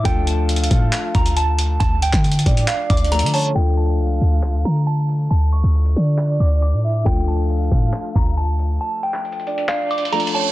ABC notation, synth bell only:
X:1
M:4/4
L:1/8
Q:1/4=137
K:Dm
V:1 name="Synth bell"
g a4 b a2 | a g3 f d' b a | g a4 b a2 | a ^c'4 d' d'2 |
g a4 b a2 | a g3 f d' b a |]